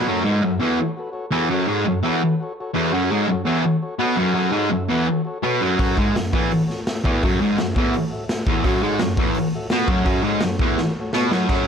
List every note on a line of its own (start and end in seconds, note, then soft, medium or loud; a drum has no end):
0.07 0.24 F#2 medium
0.07 0.25 F#3 medium
0.07 0.20 F#4 loud
0.07 0.21 A4 loud
0.07 0.20 C#5 loud
0.24 0.42 G#2 medium
0.24 0.42 G#3 loud
0.24 0.38 F#4 medium
0.24 0.38 A4 medium
0.24 0.39 B4 loud
0.43 0.57 F#2 medium
0.43 0.55 F#4 medium
0.43 0.55 A4 medium
0.43 0.56 E5 loud
0.60 0.77 E2 medium
0.60 0.78 E3 medium
0.60 0.73 F#4 medium
0.60 0.74 A4 medium
0.60 0.74 B4 medium
0.76 0.90 F#4 medium
0.76 0.91 A4 medium
0.76 0.92 C#5 loud
0.97 1.09 F#4 medium
0.97 1.10 A4 medium
0.97 1.10 B4 loud
1.12 1.26 F#4 medium
1.12 1.26 A4 medium
1.12 1.26 C#5 loud
1.31 1.49 E2 medium
1.31 1.49 E3 medium
1.31 1.45 F#4 medium
1.31 1.46 A4 medium
1.31 1.45 E5 medium
1.50 1.67 F#2 medium
1.50 1.67 F#3 medium
1.50 1.64 F#4 loud
1.50 1.64 A4 medium
1.50 1.64 C#5 loud
1.68 1.85 G#2 medium
1.68 1.85 G#3 medium
1.68 1.82 F#4 medium
1.68 1.82 A4 medium
1.68 1.81 C#5 medium
1.85 2.00 F#2 medium
1.85 1.99 F#4 loud
1.85 2.00 A4 loud
1.85 2.00 C#5 loud
2.03 2.20 E2 medium
2.03 2.21 E3 loud
2.03 2.17 F#4 medium
2.03 2.17 A4 medium
2.03 2.17 C#5 loud
2.23 2.35 F#4 medium
2.23 2.36 A4 medium
2.23 2.36 B4 loud
2.40 2.52 F#4 medium
2.40 2.53 A4 medium
2.40 2.54 C#5 loud
2.60 2.71 F#4 loud
2.60 2.71 A4 medium
2.60 2.72 C#5 loud
2.74 2.92 E2 medium
2.74 2.92 E3 medium
2.74 2.88 F#4 medium
2.74 2.87 A4 medium
2.74 2.88 C#5 medium
2.89 3.10 F#2 medium
2.89 3.04 F#4 loud
2.89 3.04 A4 loud
2.89 3.04 C#5 loud
2.94 3.11 F#3 medium
3.11 3.28 G#2 medium
3.11 3.28 G#3 loud
3.11 3.23 F#4 medium
3.11 3.24 A4 medium
3.11 3.24 C#5 loud
3.28 3.42 F#2 medium
3.28 3.42 F#4 loud
3.28 3.42 A4 medium
3.28 3.42 C#5 loud
3.44 3.63 E2 medium
3.44 3.64 E3 medium
3.44 3.58 F#4 medium
3.44 3.58 A4 medium
3.44 3.58 C#5 loud
3.63 3.76 F#4 medium
3.63 3.77 A4 medium
3.63 3.77 C#5 loud
3.82 3.95 F#4 medium
3.82 3.95 A4 medium
3.82 3.95 C#5 medium
3.99 4.17 B2 medium
3.99 4.17 B3 medium
3.99 4.14 F#4 loud
3.99 4.14 A4 medium
3.99 4.14 C#5 loud
4.16 4.33 F#2 medium
4.16 4.34 F#3 loud
4.16 4.31 F#4 medium
4.16 4.31 B4 medium
4.20 4.32 A4 medium
4.34 4.52 F#2 medium
4.34 4.52 F#3 medium
4.34 4.47 F#4 loud
4.34 4.48 A4 loud
4.34 4.49 C#5 loud
4.52 4.70 G#2 medium
4.52 4.70 G#3 medium
4.52 4.66 F#4 medium
4.52 4.66 A4 medium
4.52 4.67 C#5 medium
4.69 4.85 F#2 medium
4.69 4.83 F#4 medium
4.69 4.84 A4 medium
4.69 4.84 E5 loud
4.89 5.06 E2 medium
4.89 5.07 E3 loud
4.89 5.02 F#4 medium
4.89 5.03 A4 medium
4.89 5.04 E5 medium
5.11 5.22 F#4 medium
5.11 5.22 A4 medium
5.11 5.22 C#5 medium
5.25 5.38 F#4 medium
5.25 5.38 A4 medium
5.25 5.39 C#5 loud
5.43 5.60 B2 medium
5.43 5.61 B3 medium
5.43 5.57 F#4 loud
5.43 5.57 A4 medium
5.43 5.57 C#5 loud
5.61 5.78 F#2 loud
5.61 5.79 F#3 medium
5.61 5.75 F#4 medium
5.61 5.74 A4 medium
5.61 5.75 C#5 medium
5.77 5.96 F#2 medium
5.77 5.97 F#3 loud
5.77 5.91 F#4 loud
5.77 5.92 A4 loud
5.77 5.92 B4 loud
5.77 kick loud
5.77 open hi-hat medium
5.95 6.14 G#2 medium
5.95 6.15 G#3 loud
5.95 6.09 F#4 medium
5.95 6.09 A4 medium
5.95 6.09 E5 loud
5.95 kick loud
6.12 6.29 F#2 medium
6.12 6.26 F#4 loud
6.12 6.27 A4 loud
6.12 6.27 E5 loud
6.16 snare loud
6.16 open hi-hat medium
6.30 6.50 E2 medium
6.30 6.44 F#4 medium
6.30 6.45 A4 medium
6.30 6.45 C#5 medium
6.30 kick loud
6.34 6.51 E3 medium
6.49 6.62 F#4 medium
6.49 6.63 A4 medium
6.49 6.63 C#5 loud
6.49 open hi-hat medium
6.66 6.80 F#4 medium
6.66 6.81 A4 medium
6.66 6.81 C#5 medium
6.66 snare soft
6.87 7.00 F#4 medium
6.87 7.00 A4 medium
6.87 7.00 E5 loud
6.87 snare loud
6.87 open hi-hat medium
7.04 7.21 E2 loud
7.04 7.22 E3 medium
7.04 7.19 A4 medium
7.04 kick loud
7.09 7.19 F#4 medium
7.09 7.19 C#5 medium
7.22 7.40 F#2 medium
7.22 7.41 F#3 medium
7.22 7.34 F#4 loud
7.22 7.35 A4 loud
7.22 7.36 E5 loud
7.22 kick loud
7.22 open hi-hat medium
7.36 7.51 F#4 medium
7.36 7.51 A4 medium
7.36 7.52 C#5 medium
7.41 7.57 G#2 medium
7.41 7.58 G#3 loud
7.56 7.72 F#2 medium
7.56 7.70 F#4 loud
7.56 7.70 A4 loud
7.56 7.70 E5 loud
7.56 snare loud
7.56 open hi-hat medium
7.75 7.93 E2 medium
7.75 7.94 E3 loud
7.75 7.88 F#4 medium
7.75 7.89 A4 medium
7.75 7.89 C#5 medium
7.75 kick loud
7.91 8.05 F#4 medium
7.91 8.05 A4 medium
7.91 8.05 C#5 loud
7.91 open hi-hat medium
8.09 8.24 F#4 medium
8.09 8.23 A4 medium
8.09 8.25 E5 loud
8.29 8.42 F#4 loud
8.29 8.42 A4 loud
8.29 8.42 E5 loud
8.29 snare loud
8.29 open hi-hat medium
8.47 8.65 E2 medium
8.47 8.65 E3 loud
8.47 8.60 F#4 medium
8.47 8.61 A4 medium
8.47 8.61 C#5 medium
8.47 kick loud
8.64 8.82 F#2 loud
8.64 8.83 F#3 medium
8.64 8.79 F#4 loud
8.64 8.79 A4 loud
8.64 kick loud
8.64 open hi-hat medium
8.69 8.80 E5 loud
8.83 9.00 G#2 medium
8.83 9.01 G#3 loud
8.83 8.96 F#4 medium
8.83 8.96 A4 medium
8.83 8.96 C#5 loud
8.99 9.15 F#2 medium
8.99 9.14 F#4 loud
8.99 9.14 A4 medium
8.99 9.14 C#5 loud
8.99 snare loud
8.99 open hi-hat medium
9.16 9.36 E2 medium
9.16 9.36 E3 loud
9.16 9.30 F#4 medium
9.16 9.30 A4 medium
9.16 9.30 C#5 medium
9.16 kick loud
9.34 9.48 F#4 medium
9.34 9.48 A4 medium
9.34 9.48 C#5 loud
9.34 open hi-hat medium
9.54 9.67 F#4 medium
9.54 9.67 A4 medium
9.54 9.68 E5 loud
9.70 9.89 B2 loud
9.70 9.90 B3 medium
9.70 9.85 F#4 loud
9.70 9.86 A4 medium
9.70 snare loud
9.70 open hi-hat medium
9.74 9.86 B4 loud
9.88 10.04 F#2 medium
9.88 10.05 F#3 loud
9.88 10.02 F#4 medium
9.88 10.02 A4 medium
9.88 10.02 C#5 medium
9.88 kick loud
10.05 10.23 F#2 loud
10.05 10.24 F#3 medium
10.05 10.20 F#4 loud
10.05 10.21 A4 loud
10.05 10.21 C#5 loud
10.05 kick medium
10.05 open hi-hat medium
10.23 10.41 G#2 medium
10.23 10.43 G#3 loud
10.23 10.38 F#4 medium
10.23 10.39 A4 medium
10.23 10.39 C#5 loud
10.41 10.57 F#2 medium
10.41 10.56 F#4 loud
10.41 snare loud
10.41 open hi-hat medium
10.46 10.57 A4 loud
10.46 10.58 C#5 loud
10.59 10.78 E2 medium
10.59 10.79 E3 medium
10.59 10.75 F#4 medium
10.59 10.75 A4 medium
10.59 kick loud
10.64 10.76 B4 loud
10.78 10.92 F#4 medium
10.78 10.92 A4 medium
10.78 10.92 C#5 loud
10.78 snare medium
10.99 11.11 F#4 medium
10.99 11.11 A4 medium
10.99 11.12 C#5 loud
11.13 11.32 B2 medium
11.13 11.32 B3 medium
11.13 11.27 F#4 medium
11.13 11.27 A4 medium
11.13 11.28 C#5 loud
11.13 snare medium
11.31 11.47 F#2 medium
11.31 11.49 F#3 medium
11.31 11.46 F#4 medium
11.31 11.46 A4 medium
11.31 snare medium
11.35 11.47 B4 medium
11.49 11.66 F#2 medium
11.49 11.67 F#3 loud
11.49 11.64 F#4 loud
11.49 11.64 A4 loud
11.49 kick loud
11.49 crash loud
11.49 crash medium
11.53 11.65 C#5 loud